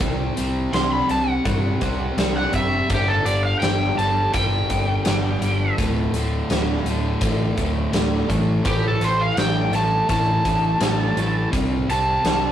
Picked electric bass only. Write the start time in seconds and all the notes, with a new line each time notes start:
0.01 C2
0.39 C2
0.73 C2
1.10 C2
1.45 G2
1.82 C2
2.17 C2
2.54 F#1
2.90 G1
3.25 G1
3.62 G1
3.99 G1
4.35 G1
4.70 G1
5.07 G1
5.41 G1
5.79 D1
6.12 D1
6.50 D1
6.85 D1
7.22 A1
7.58 D1
7.93 D1
8.30 A1
8.66 A1
9.01 A1
9.37 A1
9.71 A1
10.09 A1
10.46 A1
10.81 A1
11.17 A1
11.53 C2
11.89 C2
12.24 C2